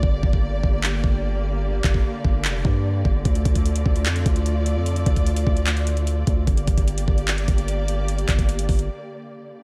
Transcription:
<<
  \new Staff \with { instrumentName = "String section" } { \time 4/4 \key g \dorian \tempo 4 = 149 << { <bes g' d''>1~ | <bes g' d''>1 | <a f' d''>1~ | <a f' d''>1 |
<bes g' d''>1~ | <bes g' d''>1 | } \\ { d1~ | d1~ | d1~ | d1~ |
d1~ | d1 | } >> }
  \new Staff \with { instrumentName = "808-style bass" } { \clef bass \time 4/4 \key g \dorian g,,8 g,,4 g,,4 g,,4.~ | g,,8 g,,8 r8 g,,8 f,,8 g,4 g,,8 | d,8 d,4 d,8 f,8 d,4~ d,16 f,16~ | f,8 d,4 d,2 d,8 |
g,,8 g,,16 g,,8. g,,4 g,,4.~ | g,,8 g,,16 g,,8. g,,8 r2 | }
  \new DrumStaff \with { instrumentName = "Drums" } \drummode { \time 4/4 bd8 bd16 bd16 r8 bd8 hc8 bd8 r4 | r8 <hc bd>16 bd16 r8 bd8 hc8 bd8 r8 bd8 | <hh bd>16 hh16 <hh bd>16 <hh bd>16 hh16 hh16 bd16 hh16 <hc hh>16 hh16 <hh bd>16 hh16 hh8 hh8 | hh16 hh16 <hh bd>16 <hh bd>16 hh16 hh16 bd16 hh16 <hc hh>16 hh16 hh16 hh16 hh8 <hh bd>8 |
<hh bd>16 hh16 <hh bd>16 <hh bd>16 hh16 hh16 bd16 hh16 <hc hh>16 hh16 <hh bd>16 hh16 hh8 hh8 | hh16 hh16 <hc hh bd>16 <hh bd>16 hh16 hh16 <hho bd>16 hh16 r4 r4 | }
>>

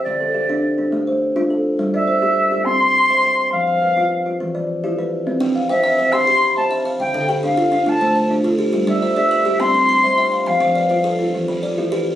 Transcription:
<<
  \new Staff \with { instrumentName = "Flute" } { \time 12/8 \key c \major \tempo 4. = 138 d''2. r2. | r8 e''2~ e''8 c'''2. | f''2. r2. | r4. e''4. c'''4. a''4 r8 |
g''4 r8 f''4. a''4. r4. | r8 e''2~ e''8 c'''2. | f''2. r2. | }
  \new Staff \with { instrumentName = "Kalimba" } { \time 12/8 \key c \major << { r1. | r1. | r1. | r4. g''4 c''8 e''4 b''4. f''8 |
f''4 b'8 a'4 d'8 f'4 c''4. g'8 | g'4 e''8 d''4 g'8 b'4 c'''4. f''8 | f''4 d''8 c''4 f'4. d''4. r8 | } \\ { r1. | r1. | r1. | r8 c'4 r8 e''4 r8 g'4 r8 e''4 |
r8 d4 r8 f'4 r8 a4 r8 f'4 | r8 g4 r8 b'4 r8 c'4 r8 e''4 | r8 f4 r8 a'4 r8 e4 r8 g'4 | } >> }
  \new Staff \with { instrumentName = "Kalimba" } { \time 12/8 \key c \major << { g''8 a'8 g'4. d'4 c''4 f'8 a'4~ | a'8 d''8 c''4. g'4 c'''4 e''8 g''4~ | g''8 c''8 b'4. f'4 d''4 g'8 b'4~ | b'8 g''8 f''4. c''4 b''4 e''4. |
r8 a'8 g'4. d'4 c''4 f'8 a'4~ | a'8 d''8 c''4. g'4 c'''4 e''8 g''4~ | g''8 c''8 b'4. r2 g'8 b'4 | } \\ { d4 r8 d'4 r8 a4 r8 d'4 r8 | g4 r8 g'4 r8 c'4 r8 c''4 r8 | f4 r8 f'4 r8 e4 r8 e'4 r8 | c'4 r8 c''4 r8 g'4 r8 c''4 r8 |
d4 r8 d'4 r8 a4 r8 d'4 r8 | g4 r8 g'4 r8 c'4 r8 c''4 r8 | f4 r8 f'4 r8 e4 r8 e'4 r8 | } >> }
>>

